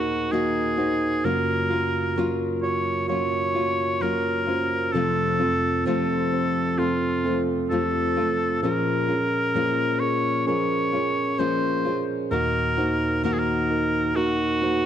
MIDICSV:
0, 0, Header, 1, 4, 480
1, 0, Start_track
1, 0, Key_signature, -5, "minor"
1, 0, Tempo, 923077
1, 645, Time_signature, 4, 2, 24, 8
1, 7726, End_track
2, 0, Start_track
2, 0, Title_t, "Oboe"
2, 0, Program_c, 0, 68
2, 0, Note_on_c, 0, 66, 66
2, 167, Note_on_c, 0, 68, 69
2, 175, Note_off_c, 0, 66, 0
2, 651, Note_on_c, 0, 70, 83
2, 659, Note_off_c, 0, 68, 0
2, 1227, Note_off_c, 0, 70, 0
2, 1366, Note_on_c, 0, 73, 74
2, 1589, Note_off_c, 0, 73, 0
2, 1606, Note_on_c, 0, 73, 84
2, 2091, Note_on_c, 0, 70, 76
2, 2098, Note_off_c, 0, 73, 0
2, 2562, Note_on_c, 0, 69, 79
2, 2570, Note_off_c, 0, 70, 0
2, 3044, Note_off_c, 0, 69, 0
2, 3050, Note_on_c, 0, 69, 71
2, 3528, Note_on_c, 0, 65, 65
2, 3536, Note_off_c, 0, 69, 0
2, 3866, Note_off_c, 0, 65, 0
2, 4003, Note_on_c, 0, 69, 65
2, 4463, Note_off_c, 0, 69, 0
2, 4486, Note_on_c, 0, 70, 82
2, 5200, Note_on_c, 0, 73, 85
2, 5207, Note_off_c, 0, 70, 0
2, 5442, Note_off_c, 0, 73, 0
2, 5446, Note_on_c, 0, 73, 82
2, 5925, Note_on_c, 0, 72, 81
2, 5933, Note_off_c, 0, 73, 0
2, 6264, Note_off_c, 0, 72, 0
2, 6405, Note_on_c, 0, 70, 87
2, 6864, Note_off_c, 0, 70, 0
2, 6887, Note_on_c, 0, 70, 75
2, 6933, Note_on_c, 0, 68, 72
2, 6941, Note_off_c, 0, 70, 0
2, 6964, Note_on_c, 0, 70, 80
2, 6972, Note_off_c, 0, 68, 0
2, 7364, Note_on_c, 0, 66, 77
2, 7372, Note_off_c, 0, 70, 0
2, 7726, Note_off_c, 0, 66, 0
2, 7726, End_track
3, 0, Start_track
3, 0, Title_t, "Tine electric piano"
3, 0, Program_c, 1, 4
3, 0, Control_c, 1, 64, 127
3, 0, Note_on_c, 1, 39, 43
3, 0, Note_on_c, 1, 46, 45
3, 0, Note_on_c, 1, 63, 56
3, 0, Note_on_c, 1, 66, 53
3, 0, Note_on_c, 1, 68, 58
3, 0, Note_on_c, 1, 70, 67
3, 0, Note_on_c, 1, 72, 62
3, 152, Note_off_c, 1, 63, 0
3, 153, Note_off_c, 1, 66, 0
3, 154, Note_off_c, 1, 70, 0
3, 163, Note_on_c, 1, 63, 59
3, 167, Note_on_c, 1, 66, 53
3, 168, Note_on_c, 1, 70, 60
3, 392, Note_off_c, 1, 63, 0
3, 394, Note_off_c, 1, 66, 0
3, 394, Note_off_c, 1, 70, 0
3, 404, Note_on_c, 1, 63, 64
3, 406, Note_on_c, 1, 66, 54
3, 408, Note_off_c, 1, 72, 0
3, 408, Note_on_c, 1, 72, 71
3, 628, Note_off_c, 1, 39, 0
3, 628, Note_off_c, 1, 46, 0
3, 632, Note_off_c, 1, 63, 0
3, 634, Note_off_c, 1, 66, 0
3, 635, Note_off_c, 1, 72, 0
3, 646, Note_on_c, 1, 65, 68
3, 647, Note_on_c, 1, 42, 48
3, 648, Note_on_c, 1, 66, 63
3, 649, Note_on_c, 1, 49, 52
3, 651, Control_c, 1, 64, 0
3, 651, Note_on_c, 1, 70, 79
3, 652, Note_off_c, 1, 68, 0
3, 730, Control_c, 1, 64, 127
3, 874, Note_off_c, 1, 65, 0
3, 875, Note_off_c, 1, 66, 0
3, 876, Note_off_c, 1, 70, 0
3, 883, Note_on_c, 1, 65, 58
3, 887, Note_on_c, 1, 66, 54
3, 889, Note_on_c, 1, 70, 64
3, 1112, Note_off_c, 1, 65, 0
3, 1114, Note_off_c, 1, 66, 0
3, 1115, Note_off_c, 1, 70, 0
3, 1126, Note_on_c, 1, 65, 55
3, 1131, Note_on_c, 1, 66, 54
3, 1132, Note_on_c, 1, 70, 62
3, 1353, Note_off_c, 1, 65, 0
3, 1356, Note_off_c, 1, 66, 0
3, 1356, Note_off_c, 1, 70, 0
3, 1365, Note_on_c, 1, 65, 54
3, 1371, Note_on_c, 1, 66, 47
3, 1371, Note_on_c, 1, 73, 61
3, 1593, Note_off_c, 1, 65, 0
3, 1596, Note_off_c, 1, 66, 0
3, 1596, Note_off_c, 1, 73, 0
3, 1603, Note_on_c, 1, 65, 74
3, 1608, Note_on_c, 1, 66, 70
3, 1611, Note_on_c, 1, 73, 81
3, 1832, Note_off_c, 1, 65, 0
3, 1834, Note_off_c, 1, 66, 0
3, 1836, Note_off_c, 1, 73, 0
3, 1842, Note_on_c, 1, 65, 59
3, 1847, Note_on_c, 1, 66, 55
3, 1850, Note_on_c, 1, 73, 64
3, 2072, Note_off_c, 1, 65, 0
3, 2074, Note_off_c, 1, 66, 0
3, 2075, Note_off_c, 1, 73, 0
3, 2090, Note_on_c, 1, 65, 58
3, 2093, Note_on_c, 1, 66, 53
3, 2097, Note_on_c, 1, 70, 66
3, 2315, Note_off_c, 1, 65, 0
3, 2317, Note_off_c, 1, 66, 0
3, 2319, Note_off_c, 1, 70, 0
3, 2328, Note_on_c, 1, 65, 53
3, 2331, Note_on_c, 1, 66, 50
3, 2333, Note_on_c, 1, 72, 64
3, 2545, Note_off_c, 1, 42, 0
3, 2546, Note_off_c, 1, 49, 0
3, 2554, Note_off_c, 1, 65, 0
3, 2556, Note_off_c, 1, 66, 0
3, 2557, Note_off_c, 1, 72, 0
3, 2564, Note_on_c, 1, 60, 63
3, 2566, Note_on_c, 1, 65, 63
3, 2567, Note_on_c, 1, 48, 44
3, 2568, Note_on_c, 1, 41, 49
3, 2571, Note_on_c, 1, 69, 76
3, 2573, Control_c, 1, 64, 0
3, 2648, Control_c, 1, 64, 127
3, 2793, Note_off_c, 1, 60, 0
3, 2794, Note_off_c, 1, 65, 0
3, 2796, Note_off_c, 1, 69, 0
3, 2806, Note_on_c, 1, 60, 56
3, 2809, Note_on_c, 1, 65, 57
3, 2813, Note_on_c, 1, 69, 59
3, 3033, Note_off_c, 1, 60, 0
3, 3035, Note_off_c, 1, 65, 0
3, 3037, Note_off_c, 1, 69, 0
3, 3042, Note_on_c, 1, 60, 60
3, 3046, Note_on_c, 1, 65, 53
3, 3050, Note_on_c, 1, 72, 56
3, 3272, Note_off_c, 1, 60, 0
3, 3274, Note_off_c, 1, 65, 0
3, 3275, Note_off_c, 1, 72, 0
3, 3288, Note_on_c, 1, 60, 52
3, 3291, Note_on_c, 1, 65, 43
3, 3294, Note_on_c, 1, 72, 58
3, 3515, Note_off_c, 1, 60, 0
3, 3516, Note_off_c, 1, 65, 0
3, 3518, Note_off_c, 1, 72, 0
3, 3526, Note_on_c, 1, 60, 76
3, 3528, Note_on_c, 1, 65, 66
3, 3530, Note_on_c, 1, 69, 80
3, 3754, Note_off_c, 1, 60, 0
3, 3755, Note_off_c, 1, 65, 0
3, 3756, Note_off_c, 1, 69, 0
3, 3767, Note_on_c, 1, 60, 60
3, 3768, Note_on_c, 1, 65, 48
3, 3772, Note_on_c, 1, 69, 62
3, 3994, Note_off_c, 1, 60, 0
3, 3994, Note_off_c, 1, 65, 0
3, 3997, Note_off_c, 1, 69, 0
3, 4005, Note_on_c, 1, 60, 55
3, 4009, Note_on_c, 1, 65, 50
3, 4010, Note_on_c, 1, 69, 65
3, 4233, Note_off_c, 1, 60, 0
3, 4235, Note_off_c, 1, 65, 0
3, 4235, Note_off_c, 1, 69, 0
3, 4246, Note_on_c, 1, 60, 54
3, 4248, Note_on_c, 1, 65, 53
3, 4252, Note_on_c, 1, 69, 60
3, 4465, Note_off_c, 1, 48, 0
3, 4466, Note_off_c, 1, 41, 0
3, 4473, Note_off_c, 1, 60, 0
3, 4475, Note_off_c, 1, 65, 0
3, 4477, Note_off_c, 1, 69, 0
3, 4483, Note_on_c, 1, 61, 68
3, 4486, Note_on_c, 1, 46, 46
3, 4486, Note_on_c, 1, 68, 58
3, 4487, Note_on_c, 1, 53, 44
3, 4489, Note_on_c, 1, 70, 81
3, 4492, Control_c, 1, 64, 0
3, 4574, Control_c, 1, 64, 127
3, 4712, Note_off_c, 1, 61, 0
3, 4714, Note_off_c, 1, 68, 0
3, 4715, Note_off_c, 1, 70, 0
3, 4724, Note_on_c, 1, 61, 55
3, 4728, Note_on_c, 1, 68, 50
3, 4731, Note_on_c, 1, 70, 61
3, 4952, Note_off_c, 1, 61, 0
3, 4954, Note_off_c, 1, 68, 0
3, 4956, Note_off_c, 1, 70, 0
3, 4965, Note_on_c, 1, 61, 56
3, 4969, Note_on_c, 1, 68, 53
3, 4972, Note_on_c, 1, 70, 59
3, 5193, Note_off_c, 1, 61, 0
3, 5195, Note_off_c, 1, 68, 0
3, 5197, Note_off_c, 1, 70, 0
3, 5205, Note_on_c, 1, 61, 54
3, 5210, Note_on_c, 1, 68, 49
3, 5211, Note_on_c, 1, 70, 57
3, 5433, Note_off_c, 1, 61, 0
3, 5436, Note_off_c, 1, 68, 0
3, 5436, Note_off_c, 1, 70, 0
3, 5443, Note_on_c, 1, 61, 78
3, 5446, Note_on_c, 1, 68, 68
3, 5450, Note_on_c, 1, 70, 87
3, 5672, Note_off_c, 1, 61, 0
3, 5674, Note_off_c, 1, 68, 0
3, 5675, Note_off_c, 1, 70, 0
3, 5686, Note_on_c, 1, 61, 59
3, 5688, Note_on_c, 1, 68, 53
3, 5692, Note_on_c, 1, 73, 62
3, 5913, Note_off_c, 1, 61, 0
3, 5914, Note_off_c, 1, 68, 0
3, 5917, Note_off_c, 1, 73, 0
3, 5925, Note_on_c, 1, 61, 59
3, 5928, Note_on_c, 1, 68, 54
3, 5931, Note_on_c, 1, 70, 60
3, 6153, Note_off_c, 1, 61, 0
3, 6155, Note_off_c, 1, 68, 0
3, 6156, Note_off_c, 1, 70, 0
3, 6168, Note_on_c, 1, 61, 58
3, 6168, Note_on_c, 1, 68, 52
3, 6173, Note_on_c, 1, 72, 59
3, 6385, Note_off_c, 1, 46, 0
3, 6385, Note_off_c, 1, 53, 0
3, 6394, Note_off_c, 1, 61, 0
3, 6395, Note_off_c, 1, 68, 0
3, 6397, Note_off_c, 1, 72, 0
3, 6401, Note_on_c, 1, 63, 66
3, 6403, Note_on_c, 1, 39, 49
3, 6405, Note_on_c, 1, 46, 46
3, 6406, Note_on_c, 1, 66, 62
3, 6406, Note_on_c, 1, 70, 73
3, 6412, Control_c, 1, 64, 0
3, 6515, Control_c, 1, 64, 127
3, 6631, Note_off_c, 1, 63, 0
3, 6633, Note_off_c, 1, 66, 0
3, 6633, Note_off_c, 1, 70, 0
3, 6641, Note_on_c, 1, 63, 63
3, 6646, Note_on_c, 1, 66, 51
3, 6647, Note_on_c, 1, 72, 67
3, 6871, Note_off_c, 1, 63, 0
3, 6873, Note_off_c, 1, 66, 0
3, 6874, Note_off_c, 1, 72, 0
3, 6885, Note_on_c, 1, 63, 60
3, 6888, Note_on_c, 1, 66, 52
3, 6891, Note_on_c, 1, 70, 62
3, 7113, Note_off_c, 1, 63, 0
3, 7115, Note_off_c, 1, 66, 0
3, 7116, Note_off_c, 1, 70, 0
3, 7126, Note_on_c, 1, 63, 56
3, 7129, Note_on_c, 1, 66, 49
3, 7132, Note_on_c, 1, 70, 52
3, 7354, Note_off_c, 1, 63, 0
3, 7355, Note_off_c, 1, 66, 0
3, 7356, Note_off_c, 1, 70, 0
3, 7362, Note_on_c, 1, 63, 78
3, 7365, Note_on_c, 1, 66, 70
3, 7370, Note_on_c, 1, 70, 88
3, 7592, Note_off_c, 1, 63, 0
3, 7593, Note_off_c, 1, 66, 0
3, 7595, Note_off_c, 1, 70, 0
3, 7603, Note_on_c, 1, 63, 58
3, 7607, Note_on_c, 1, 66, 59
3, 7609, Note_on_c, 1, 72, 67
3, 7726, Note_off_c, 1, 39, 0
3, 7726, Note_off_c, 1, 46, 0
3, 7726, Note_off_c, 1, 63, 0
3, 7726, Note_off_c, 1, 66, 0
3, 7726, Note_off_c, 1, 72, 0
3, 7726, End_track
4, 0, Start_track
4, 0, Title_t, "Nylon-string guitar"
4, 0, Program_c, 2, 24
4, 0, Note_on_c, 2, 58, 33
4, 0, Note_on_c, 2, 63, 41
4, 0, Note_on_c, 2, 66, 44
4, 162, Note_off_c, 2, 58, 0
4, 162, Note_on_c, 2, 51, 49
4, 163, Note_off_c, 2, 66, 0
4, 165, Note_off_c, 2, 63, 0
4, 168, Note_on_c, 2, 58, 64
4, 171, Note_on_c, 2, 63, 62
4, 176, Note_on_c, 2, 66, 67
4, 396, Note_off_c, 2, 66, 0
4, 402, Note_on_c, 2, 66, 41
4, 404, Note_off_c, 2, 51, 0
4, 406, Note_off_c, 2, 58, 0
4, 406, Note_off_c, 2, 63, 0
4, 412, Note_on_c, 2, 63, 41
4, 419, Note_on_c, 2, 58, 37
4, 644, Note_off_c, 2, 66, 0
4, 645, Note_off_c, 2, 58, 0
4, 645, Note_on_c, 2, 54, 56
4, 649, Note_off_c, 2, 63, 0
4, 651, Note_on_c, 2, 58, 57
4, 654, Note_on_c, 2, 61, 62
4, 659, Note_on_c, 2, 65, 59
4, 880, Note_off_c, 2, 65, 0
4, 885, Note_off_c, 2, 54, 0
4, 886, Note_on_c, 2, 65, 45
4, 888, Note_off_c, 2, 58, 0
4, 889, Note_off_c, 2, 61, 0
4, 896, Note_on_c, 2, 61, 40
4, 901, Note_on_c, 2, 58, 34
4, 1123, Note_on_c, 2, 54, 65
4, 1125, Note_off_c, 2, 58, 0
4, 1126, Note_off_c, 2, 61, 0
4, 1126, Note_off_c, 2, 65, 0
4, 1131, Note_on_c, 2, 58, 69
4, 1132, Note_on_c, 2, 61, 60
4, 1138, Note_on_c, 2, 65, 78
4, 1595, Note_off_c, 2, 54, 0
4, 1601, Note_on_c, 2, 54, 47
4, 1602, Note_off_c, 2, 58, 0
4, 1608, Note_off_c, 2, 61, 0
4, 1608, Note_on_c, 2, 58, 46
4, 1616, Note_on_c, 2, 61, 51
4, 1617, Note_off_c, 2, 65, 0
4, 1619, Note_on_c, 2, 65, 53
4, 1839, Note_off_c, 2, 65, 0
4, 1843, Note_off_c, 2, 54, 0
4, 1845, Note_on_c, 2, 65, 41
4, 1846, Note_off_c, 2, 58, 0
4, 1851, Note_off_c, 2, 61, 0
4, 1856, Note_on_c, 2, 61, 35
4, 1862, Note_on_c, 2, 58, 34
4, 2083, Note_off_c, 2, 58, 0
4, 2084, Note_on_c, 2, 54, 57
4, 2085, Note_off_c, 2, 65, 0
4, 2087, Note_off_c, 2, 61, 0
4, 2089, Note_on_c, 2, 58, 60
4, 2093, Note_on_c, 2, 61, 56
4, 2095, Note_on_c, 2, 65, 65
4, 2314, Note_off_c, 2, 65, 0
4, 2321, Note_on_c, 2, 65, 45
4, 2324, Note_off_c, 2, 54, 0
4, 2325, Note_off_c, 2, 61, 0
4, 2327, Note_off_c, 2, 58, 0
4, 2331, Note_on_c, 2, 61, 43
4, 2338, Note_on_c, 2, 58, 30
4, 2563, Note_off_c, 2, 65, 0
4, 2566, Note_on_c, 2, 41, 56
4, 2568, Note_off_c, 2, 61, 0
4, 2571, Note_off_c, 2, 58, 0
4, 2571, Note_on_c, 2, 48, 51
4, 2572, Note_on_c, 2, 53, 65
4, 2575, Note_on_c, 2, 57, 53
4, 2577, Note_on_c, 2, 60, 69
4, 2579, Note_on_c, 2, 65, 65
4, 2800, Note_off_c, 2, 65, 0
4, 2806, Note_off_c, 2, 41, 0
4, 2806, Note_off_c, 2, 60, 0
4, 2807, Note_on_c, 2, 65, 44
4, 2808, Note_off_c, 2, 48, 0
4, 2809, Note_off_c, 2, 53, 0
4, 2810, Note_off_c, 2, 57, 0
4, 2812, Note_on_c, 2, 60, 43
4, 2820, Note_on_c, 2, 57, 35
4, 2824, Note_on_c, 2, 53, 37
4, 3042, Note_off_c, 2, 53, 0
4, 3043, Note_on_c, 2, 41, 65
4, 3045, Note_off_c, 2, 57, 0
4, 3045, Note_on_c, 2, 48, 66
4, 3046, Note_off_c, 2, 65, 0
4, 3047, Note_off_c, 2, 60, 0
4, 3048, Note_on_c, 2, 53, 65
4, 3051, Note_on_c, 2, 57, 70
4, 3053, Note_on_c, 2, 60, 67
4, 3055, Note_on_c, 2, 65, 74
4, 3522, Note_off_c, 2, 53, 0
4, 3524, Note_off_c, 2, 41, 0
4, 3524, Note_off_c, 2, 57, 0
4, 3524, Note_on_c, 2, 53, 51
4, 3525, Note_off_c, 2, 48, 0
4, 3529, Note_off_c, 2, 60, 0
4, 3530, Note_on_c, 2, 57, 53
4, 3536, Note_on_c, 2, 60, 54
4, 3540, Note_off_c, 2, 65, 0
4, 3542, Note_on_c, 2, 65, 50
4, 3761, Note_off_c, 2, 65, 0
4, 3765, Note_off_c, 2, 53, 0
4, 3767, Note_off_c, 2, 60, 0
4, 3767, Note_on_c, 2, 65, 40
4, 3768, Note_off_c, 2, 57, 0
4, 3773, Note_on_c, 2, 60, 38
4, 3780, Note_on_c, 2, 57, 33
4, 3784, Note_on_c, 2, 53, 33
4, 4006, Note_off_c, 2, 65, 0
4, 4009, Note_off_c, 2, 53, 0
4, 4009, Note_off_c, 2, 60, 0
4, 4010, Note_off_c, 2, 57, 0
4, 4010, Note_on_c, 2, 41, 55
4, 4012, Note_on_c, 2, 48, 52
4, 4015, Note_on_c, 2, 53, 62
4, 4016, Note_on_c, 2, 57, 50
4, 4018, Note_on_c, 2, 60, 62
4, 4021, Note_on_c, 2, 65, 56
4, 4241, Note_off_c, 2, 65, 0
4, 4247, Note_off_c, 2, 60, 0
4, 4247, Note_on_c, 2, 65, 47
4, 4248, Note_off_c, 2, 41, 0
4, 4249, Note_off_c, 2, 48, 0
4, 4250, Note_off_c, 2, 53, 0
4, 4251, Note_off_c, 2, 57, 0
4, 4253, Note_on_c, 2, 60, 41
4, 4259, Note_on_c, 2, 57, 39
4, 4262, Note_on_c, 2, 53, 35
4, 4483, Note_off_c, 2, 53, 0
4, 4485, Note_on_c, 2, 46, 58
4, 4486, Note_off_c, 2, 65, 0
4, 4489, Note_off_c, 2, 60, 0
4, 4490, Note_off_c, 2, 57, 0
4, 4490, Note_on_c, 2, 53, 55
4, 4492, Note_on_c, 2, 56, 60
4, 4495, Note_on_c, 2, 61, 58
4, 4499, Note_on_c, 2, 65, 66
4, 4717, Note_off_c, 2, 65, 0
4, 4723, Note_on_c, 2, 65, 42
4, 4725, Note_off_c, 2, 46, 0
4, 4725, Note_off_c, 2, 61, 0
4, 4727, Note_off_c, 2, 53, 0
4, 4728, Note_off_c, 2, 56, 0
4, 4731, Note_on_c, 2, 61, 41
4, 4741, Note_on_c, 2, 56, 34
4, 4962, Note_off_c, 2, 56, 0
4, 4962, Note_on_c, 2, 46, 63
4, 4964, Note_off_c, 2, 65, 0
4, 4965, Note_off_c, 2, 61, 0
4, 4965, Note_on_c, 2, 53, 64
4, 4968, Note_on_c, 2, 56, 71
4, 4971, Note_on_c, 2, 61, 67
4, 4973, Note_on_c, 2, 65, 73
4, 5437, Note_off_c, 2, 53, 0
4, 5443, Note_off_c, 2, 56, 0
4, 5443, Note_on_c, 2, 53, 50
4, 5444, Note_off_c, 2, 46, 0
4, 5448, Note_off_c, 2, 61, 0
4, 5449, Note_off_c, 2, 65, 0
4, 5449, Note_on_c, 2, 56, 53
4, 5455, Note_on_c, 2, 61, 49
4, 5460, Note_on_c, 2, 65, 52
4, 5675, Note_off_c, 2, 65, 0
4, 5681, Note_on_c, 2, 65, 40
4, 5684, Note_off_c, 2, 53, 0
4, 5685, Note_off_c, 2, 61, 0
4, 5687, Note_off_c, 2, 56, 0
4, 5691, Note_on_c, 2, 61, 41
4, 5698, Note_on_c, 2, 56, 31
4, 5919, Note_off_c, 2, 56, 0
4, 5919, Note_on_c, 2, 46, 57
4, 5921, Note_off_c, 2, 61, 0
4, 5922, Note_on_c, 2, 53, 55
4, 5923, Note_off_c, 2, 65, 0
4, 5925, Note_on_c, 2, 56, 57
4, 5927, Note_on_c, 2, 61, 67
4, 5930, Note_on_c, 2, 65, 60
4, 6154, Note_off_c, 2, 65, 0
4, 6160, Note_on_c, 2, 65, 42
4, 6162, Note_off_c, 2, 46, 0
4, 6162, Note_off_c, 2, 61, 0
4, 6163, Note_off_c, 2, 53, 0
4, 6165, Note_off_c, 2, 56, 0
4, 6168, Note_on_c, 2, 61, 35
4, 6177, Note_on_c, 2, 56, 37
4, 6401, Note_on_c, 2, 51, 63
4, 6403, Note_off_c, 2, 56, 0
4, 6403, Note_off_c, 2, 65, 0
4, 6405, Note_on_c, 2, 58, 62
4, 6407, Note_off_c, 2, 61, 0
4, 6409, Note_on_c, 2, 63, 70
4, 6411, Note_on_c, 2, 66, 69
4, 6634, Note_off_c, 2, 66, 0
4, 6640, Note_on_c, 2, 66, 51
4, 6643, Note_off_c, 2, 51, 0
4, 6644, Note_off_c, 2, 63, 0
4, 6645, Note_off_c, 2, 58, 0
4, 6650, Note_on_c, 2, 63, 35
4, 6658, Note_on_c, 2, 58, 36
4, 6880, Note_off_c, 2, 58, 0
4, 6882, Note_off_c, 2, 66, 0
4, 6882, Note_on_c, 2, 51, 75
4, 6883, Note_off_c, 2, 63, 0
4, 6887, Note_on_c, 2, 58, 75
4, 6890, Note_on_c, 2, 63, 76
4, 6893, Note_on_c, 2, 66, 77
4, 7352, Note_off_c, 2, 51, 0
4, 7359, Note_on_c, 2, 51, 49
4, 7363, Note_off_c, 2, 63, 0
4, 7364, Note_off_c, 2, 58, 0
4, 7366, Note_on_c, 2, 58, 51
4, 7370, Note_on_c, 2, 63, 50
4, 7373, Note_off_c, 2, 66, 0
4, 7376, Note_on_c, 2, 66, 56
4, 7594, Note_off_c, 2, 66, 0
4, 7601, Note_on_c, 2, 66, 42
4, 7602, Note_off_c, 2, 51, 0
4, 7602, Note_off_c, 2, 63, 0
4, 7605, Note_off_c, 2, 58, 0
4, 7609, Note_on_c, 2, 63, 38
4, 7618, Note_on_c, 2, 58, 38
4, 7726, Note_off_c, 2, 58, 0
4, 7726, Note_off_c, 2, 63, 0
4, 7726, Note_off_c, 2, 66, 0
4, 7726, End_track
0, 0, End_of_file